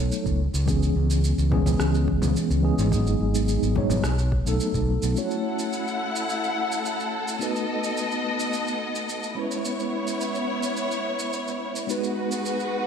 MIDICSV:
0, 0, Header, 1, 5, 480
1, 0, Start_track
1, 0, Tempo, 560748
1, 579, Time_signature, 4, 2, 24, 8
1, 11016, End_track
2, 0, Start_track
2, 0, Title_t, "String section"
2, 0, Program_c, 0, 48
2, 4420, Note_on_c, 0, 64, 68
2, 4420, Note_on_c, 0, 69, 64
2, 4423, Note_on_c, 0, 78, 75
2, 6320, Note_off_c, 0, 64, 0
2, 6322, Note_off_c, 0, 78, 0
2, 6341, Note_on_c, 0, 59, 68
2, 6344, Note_on_c, 0, 75, 72
2, 7985, Note_off_c, 0, 69, 0
2, 8003, Note_off_c, 0, 59, 0
2, 8005, Note_off_c, 0, 75, 0
2, 8016, Note_on_c, 0, 64, 62
2, 8018, Note_on_c, 0, 73, 78
2, 8019, Note_on_c, 0, 59, 64
2, 10156, Note_off_c, 0, 64, 0
2, 10157, Note_off_c, 0, 59, 0
2, 10157, Note_off_c, 0, 73, 0
2, 10177, Note_on_c, 0, 66, 69
2, 10178, Note_on_c, 0, 56, 67
2, 10179, Note_on_c, 0, 71, 77
2, 11016, Note_off_c, 0, 56, 0
2, 11016, Note_off_c, 0, 66, 0
2, 11016, Note_off_c, 0, 71, 0
2, 11016, End_track
3, 0, Start_track
3, 0, Title_t, "Tine electric piano"
3, 0, Program_c, 1, 4
3, 0, Control_c, 1, 64, 127
3, 0, Note_on_c, 1, 54, 77
3, 0, Note_on_c, 1, 57, 73
3, 0, Note_on_c, 1, 59, 67
3, 0, Note_on_c, 1, 63, 70
3, 0, Note_on_c, 1, 69, 95
3, 0, Note_on_c, 1, 73, 88
3, 349, Note_off_c, 1, 54, 0
3, 349, Note_off_c, 1, 73, 0
3, 349, Control_c, 1, 64, 0
3, 350, Note_off_c, 1, 69, 0
3, 353, Note_off_c, 1, 57, 0
3, 354, Note_off_c, 1, 59, 0
3, 355, Note_off_c, 1, 63, 0
3, 520, Control_c, 1, 64, 127
3, 565, Note_on_c, 1, 52, 83
3, 575, Note_on_c, 1, 56, 72
3, 580, Note_on_c, 1, 59, 76
3, 588, Note_on_c, 1, 61, 77
3, 596, Note_on_c, 1, 68, 82
3, 1264, Note_off_c, 1, 52, 0
3, 1269, Note_off_c, 1, 56, 0
3, 1271, Note_off_c, 1, 59, 0
3, 1275, Note_off_c, 1, 61, 0
3, 1279, Note_off_c, 1, 68, 0
3, 1283, Note_on_c, 1, 52, 90
3, 1293, Note_on_c, 1, 56, 79
3, 1300, Note_on_c, 1, 59, 84
3, 1306, Note_on_c, 1, 61, 81
3, 1315, Note_on_c, 1, 68, 101
3, 2223, Note_off_c, 1, 52, 0
3, 2227, Note_off_c, 1, 56, 0
3, 2231, Note_off_c, 1, 59, 0
3, 2234, Note_off_c, 1, 61, 0
3, 2239, Note_off_c, 1, 68, 0
3, 2250, Note_on_c, 1, 52, 91
3, 2251, Note_on_c, 1, 56, 83
3, 2255, Note_on_c, 1, 59, 78
3, 2261, Note_on_c, 1, 61, 84
3, 2264, Note_on_c, 1, 68, 101
3, 2466, Note_off_c, 1, 52, 0
3, 2467, Note_off_c, 1, 56, 0
3, 2469, Note_off_c, 1, 59, 0
3, 2472, Note_off_c, 1, 61, 0
3, 2473, Note_off_c, 1, 68, 0
3, 2482, Note_on_c, 1, 54, 89
3, 2491, Note_on_c, 1, 56, 84
3, 2498, Note_on_c, 1, 59, 77
3, 2506, Note_on_c, 1, 63, 78
3, 2511, Control_c, 1, 64, 0
3, 2513, Note_on_c, 1, 68, 102
3, 2641, Control_c, 1, 64, 127
3, 3182, Note_off_c, 1, 54, 0
3, 3187, Note_off_c, 1, 56, 0
3, 3190, Note_off_c, 1, 59, 0
3, 3194, Note_off_c, 1, 63, 0
3, 3198, Note_off_c, 1, 68, 0
3, 3217, Note_on_c, 1, 54, 76
3, 3222, Note_on_c, 1, 56, 69
3, 3226, Note_on_c, 1, 59, 73
3, 3228, Note_on_c, 1, 63, 72
3, 3233, Note_on_c, 1, 73, 88
3, 3380, Note_off_c, 1, 54, 0
3, 3383, Note_off_c, 1, 56, 0
3, 3385, Note_off_c, 1, 59, 0
3, 3386, Note_off_c, 1, 63, 0
3, 3388, Note_off_c, 1, 73, 0
3, 3470, Control_c, 1, 64, 0
3, 3640, Control_c, 1, 64, 127
3, 3809, Note_on_c, 1, 54, 92
3, 3818, Note_on_c, 1, 57, 86
3, 3825, Note_on_c, 1, 59, 86
3, 3831, Note_on_c, 1, 63, 80
3, 3840, Note_on_c, 1, 69, 101
3, 4384, Note_off_c, 1, 54, 0
3, 4389, Note_off_c, 1, 57, 0
3, 4392, Note_off_c, 1, 59, 0
3, 4395, Note_off_c, 1, 63, 0
3, 4400, Note_off_c, 1, 69, 0
3, 4406, Note_on_c, 1, 57, 66
3, 4413, Note_on_c, 1, 61, 60
3, 4421, Note_on_c, 1, 64, 60
3, 4430, Note_on_c, 1, 66, 57
3, 4431, Control_c, 1, 64, 0
3, 4436, Note_on_c, 1, 73, 70
3, 4599, Control_c, 1, 64, 127
3, 6304, Note_off_c, 1, 57, 0
3, 6308, Note_off_c, 1, 61, 0
3, 6312, Note_off_c, 1, 64, 0
3, 6316, Note_off_c, 1, 66, 0
3, 6319, Note_off_c, 1, 73, 0
3, 6326, Note_on_c, 1, 57, 65
3, 6335, Note_on_c, 1, 59, 55
3, 6342, Note_on_c, 1, 63, 60
3, 6350, Control_c, 1, 64, 0
3, 6350, Note_on_c, 1, 66, 59
3, 6356, Note_on_c, 1, 71, 69
3, 6510, Control_c, 1, 64, 127
3, 7984, Note_off_c, 1, 57, 0
3, 7989, Note_off_c, 1, 59, 0
3, 7992, Note_off_c, 1, 63, 0
3, 7996, Note_off_c, 1, 66, 0
3, 7999, Note_off_c, 1, 71, 0
3, 8004, Note_on_c, 1, 56, 61
3, 8011, Note_on_c, 1, 59, 62
3, 8019, Note_on_c, 1, 61, 57
3, 8025, Note_on_c, 1, 64, 63
3, 8029, Control_c, 1, 64, 0
3, 8036, Note_on_c, 1, 71, 70
3, 8158, Control_c, 1, 64, 127
3, 10143, Note_off_c, 1, 56, 0
3, 10147, Note_off_c, 1, 59, 0
3, 10151, Note_off_c, 1, 61, 0
3, 10154, Note_off_c, 1, 64, 0
3, 10159, Note_off_c, 1, 71, 0
3, 10159, Note_on_c, 1, 56, 62
3, 10167, Note_on_c, 1, 59, 61
3, 10175, Note_on_c, 1, 63, 62
3, 10183, Note_on_c, 1, 66, 60
3, 10189, Control_c, 1, 64, 0
3, 10193, Note_on_c, 1, 71, 71
3, 10346, Control_c, 1, 64, 127
3, 11016, Note_off_c, 1, 56, 0
3, 11016, Note_off_c, 1, 59, 0
3, 11016, Note_off_c, 1, 63, 0
3, 11016, Note_off_c, 1, 66, 0
3, 11016, Note_off_c, 1, 71, 0
3, 11016, End_track
4, 0, Start_track
4, 0, Title_t, "Fingered electric bass"
4, 0, Program_c, 2, 33
4, 222, Note_on_c, 2, 37, 94
4, 382, Note_off_c, 2, 37, 0
4, 461, Note_on_c, 2, 37, 106
4, 758, Note_off_c, 2, 37, 0
4, 817, Note_on_c, 2, 37, 95
4, 1117, Note_off_c, 2, 37, 0
4, 1181, Note_on_c, 2, 37, 90
4, 1478, Note_off_c, 2, 37, 0
4, 1539, Note_on_c, 2, 37, 95
4, 1838, Note_off_c, 2, 37, 0
4, 1902, Note_on_c, 2, 37, 102
4, 1981, Note_off_c, 2, 37, 0
4, 2142, Note_on_c, 2, 37, 93
4, 2302, Note_off_c, 2, 37, 0
4, 2383, Note_on_c, 2, 32, 104
4, 2679, Note_off_c, 2, 32, 0
4, 2741, Note_on_c, 2, 32, 92
4, 3039, Note_off_c, 2, 32, 0
4, 3101, Note_on_c, 2, 32, 88
4, 3398, Note_off_c, 2, 32, 0
4, 3459, Note_on_c, 2, 35, 94
4, 3758, Note_off_c, 2, 35, 0
4, 3822, Note_on_c, 2, 35, 101
4, 3901, Note_off_c, 2, 35, 0
4, 4060, Note_on_c, 2, 35, 101
4, 4221, Note_off_c, 2, 35, 0
4, 4305, Note_on_c, 2, 35, 111
4, 4382, Note_off_c, 2, 35, 0
4, 11016, End_track
5, 0, Start_track
5, 0, Title_t, "Drums"
5, 103, Note_on_c, 9, 82, 53
5, 189, Note_off_c, 9, 82, 0
5, 222, Note_on_c, 9, 36, 57
5, 224, Note_on_c, 9, 82, 28
5, 307, Note_off_c, 9, 36, 0
5, 310, Note_off_c, 9, 82, 0
5, 467, Note_on_c, 9, 82, 59
5, 553, Note_off_c, 9, 82, 0
5, 580, Note_on_c, 9, 36, 106
5, 584, Note_on_c, 9, 82, 54
5, 665, Note_off_c, 9, 36, 0
5, 669, Note_off_c, 9, 82, 0
5, 709, Note_on_c, 9, 82, 29
5, 794, Note_off_c, 9, 82, 0
5, 946, Note_on_c, 9, 82, 62
5, 1032, Note_off_c, 9, 82, 0
5, 1065, Note_on_c, 9, 82, 52
5, 1151, Note_off_c, 9, 82, 0
5, 1187, Note_on_c, 9, 82, 31
5, 1273, Note_off_c, 9, 82, 0
5, 1298, Note_on_c, 9, 64, 64
5, 1299, Note_on_c, 9, 36, 96
5, 1384, Note_off_c, 9, 64, 0
5, 1385, Note_off_c, 9, 36, 0
5, 1422, Note_on_c, 9, 64, 82
5, 1423, Note_on_c, 9, 36, 57
5, 1429, Note_on_c, 9, 82, 66
5, 1507, Note_off_c, 9, 64, 0
5, 1509, Note_off_c, 9, 36, 0
5, 1514, Note_off_c, 9, 82, 0
5, 1537, Note_on_c, 9, 37, 78
5, 1544, Note_on_c, 9, 82, 53
5, 1623, Note_off_c, 9, 37, 0
5, 1630, Note_off_c, 9, 82, 0
5, 1667, Note_on_c, 9, 82, 31
5, 1752, Note_off_c, 9, 82, 0
5, 1780, Note_on_c, 9, 36, 89
5, 1865, Note_off_c, 9, 36, 0
5, 1899, Note_on_c, 9, 64, 83
5, 1906, Note_on_c, 9, 82, 58
5, 1984, Note_off_c, 9, 64, 0
5, 1991, Note_off_c, 9, 82, 0
5, 2024, Note_on_c, 9, 82, 48
5, 2110, Note_off_c, 9, 82, 0
5, 2148, Note_on_c, 9, 82, 31
5, 2233, Note_off_c, 9, 82, 0
5, 2387, Note_on_c, 9, 82, 60
5, 2472, Note_off_c, 9, 82, 0
5, 2499, Note_on_c, 9, 36, 120
5, 2506, Note_on_c, 9, 82, 50
5, 2585, Note_off_c, 9, 36, 0
5, 2591, Note_off_c, 9, 82, 0
5, 2629, Note_on_c, 9, 82, 33
5, 2714, Note_off_c, 9, 82, 0
5, 2867, Note_on_c, 9, 82, 63
5, 2953, Note_off_c, 9, 82, 0
5, 2983, Note_on_c, 9, 82, 50
5, 3069, Note_off_c, 9, 82, 0
5, 3109, Note_on_c, 9, 82, 32
5, 3195, Note_off_c, 9, 82, 0
5, 3215, Note_on_c, 9, 64, 65
5, 3218, Note_on_c, 9, 36, 102
5, 3301, Note_off_c, 9, 64, 0
5, 3304, Note_off_c, 9, 36, 0
5, 3337, Note_on_c, 9, 64, 79
5, 3341, Note_on_c, 9, 36, 58
5, 3344, Note_on_c, 9, 82, 66
5, 3423, Note_off_c, 9, 64, 0
5, 3427, Note_off_c, 9, 36, 0
5, 3430, Note_off_c, 9, 82, 0
5, 3454, Note_on_c, 9, 37, 75
5, 3461, Note_on_c, 9, 82, 53
5, 3540, Note_off_c, 9, 37, 0
5, 3547, Note_off_c, 9, 82, 0
5, 3584, Note_on_c, 9, 82, 33
5, 3670, Note_off_c, 9, 82, 0
5, 3698, Note_on_c, 9, 36, 86
5, 3784, Note_off_c, 9, 36, 0
5, 3825, Note_on_c, 9, 82, 60
5, 3911, Note_off_c, 9, 82, 0
5, 3942, Note_on_c, 9, 82, 52
5, 4027, Note_off_c, 9, 82, 0
5, 4062, Note_on_c, 9, 36, 56
5, 4063, Note_on_c, 9, 82, 31
5, 4147, Note_off_c, 9, 36, 0
5, 4149, Note_off_c, 9, 82, 0
5, 4304, Note_on_c, 9, 82, 59
5, 4389, Note_off_c, 9, 82, 0
5, 4424, Note_on_c, 9, 82, 48
5, 4510, Note_off_c, 9, 82, 0
5, 4546, Note_on_c, 9, 82, 30
5, 4632, Note_off_c, 9, 82, 0
5, 4787, Note_on_c, 9, 82, 55
5, 4872, Note_off_c, 9, 82, 0
5, 4905, Note_on_c, 9, 82, 48
5, 4991, Note_off_c, 9, 82, 0
5, 5031, Note_on_c, 9, 82, 28
5, 5116, Note_off_c, 9, 82, 0
5, 5272, Note_on_c, 9, 82, 62
5, 5358, Note_off_c, 9, 82, 0
5, 5389, Note_on_c, 9, 82, 45
5, 5475, Note_off_c, 9, 82, 0
5, 5513, Note_on_c, 9, 82, 28
5, 5598, Note_off_c, 9, 82, 0
5, 5753, Note_on_c, 9, 82, 56
5, 5839, Note_off_c, 9, 82, 0
5, 5870, Note_on_c, 9, 82, 47
5, 5955, Note_off_c, 9, 82, 0
5, 5994, Note_on_c, 9, 82, 27
5, 6080, Note_off_c, 9, 82, 0
5, 6232, Note_on_c, 9, 82, 54
5, 6318, Note_off_c, 9, 82, 0
5, 6348, Note_on_c, 9, 82, 51
5, 6434, Note_off_c, 9, 82, 0
5, 6472, Note_on_c, 9, 82, 29
5, 6557, Note_off_c, 9, 82, 0
5, 6710, Note_on_c, 9, 82, 58
5, 6796, Note_off_c, 9, 82, 0
5, 6826, Note_on_c, 9, 82, 50
5, 6912, Note_off_c, 9, 82, 0
5, 6949, Note_on_c, 9, 82, 28
5, 7034, Note_off_c, 9, 82, 0
5, 7189, Note_on_c, 9, 82, 61
5, 7275, Note_off_c, 9, 82, 0
5, 7305, Note_on_c, 9, 82, 51
5, 7391, Note_off_c, 9, 82, 0
5, 7428, Note_on_c, 9, 82, 31
5, 7514, Note_off_c, 9, 82, 0
5, 7666, Note_on_c, 9, 82, 56
5, 7751, Note_off_c, 9, 82, 0
5, 7785, Note_on_c, 9, 82, 48
5, 7870, Note_off_c, 9, 82, 0
5, 7904, Note_on_c, 9, 82, 30
5, 7990, Note_off_c, 9, 82, 0
5, 8145, Note_on_c, 9, 82, 55
5, 8231, Note_off_c, 9, 82, 0
5, 8262, Note_on_c, 9, 82, 53
5, 8347, Note_off_c, 9, 82, 0
5, 8386, Note_on_c, 9, 82, 30
5, 8471, Note_off_c, 9, 82, 0
5, 8624, Note_on_c, 9, 82, 54
5, 8709, Note_off_c, 9, 82, 0
5, 8741, Note_on_c, 9, 82, 53
5, 8827, Note_off_c, 9, 82, 0
5, 8862, Note_on_c, 9, 82, 29
5, 8948, Note_off_c, 9, 82, 0
5, 9100, Note_on_c, 9, 82, 63
5, 9185, Note_off_c, 9, 82, 0
5, 9218, Note_on_c, 9, 82, 47
5, 9304, Note_off_c, 9, 82, 0
5, 9343, Note_on_c, 9, 82, 33
5, 9428, Note_off_c, 9, 82, 0
5, 9582, Note_on_c, 9, 82, 56
5, 9667, Note_off_c, 9, 82, 0
5, 9700, Note_on_c, 9, 82, 47
5, 9786, Note_off_c, 9, 82, 0
5, 9826, Note_on_c, 9, 82, 27
5, 9911, Note_off_c, 9, 82, 0
5, 10065, Note_on_c, 9, 82, 60
5, 10151, Note_off_c, 9, 82, 0
5, 10183, Note_on_c, 9, 82, 54
5, 10269, Note_off_c, 9, 82, 0
5, 10305, Note_on_c, 9, 82, 30
5, 10391, Note_off_c, 9, 82, 0
5, 10544, Note_on_c, 9, 82, 62
5, 10630, Note_off_c, 9, 82, 0
5, 10664, Note_on_c, 9, 82, 47
5, 10750, Note_off_c, 9, 82, 0
5, 10786, Note_on_c, 9, 82, 28
5, 10871, Note_off_c, 9, 82, 0
5, 11016, End_track
0, 0, End_of_file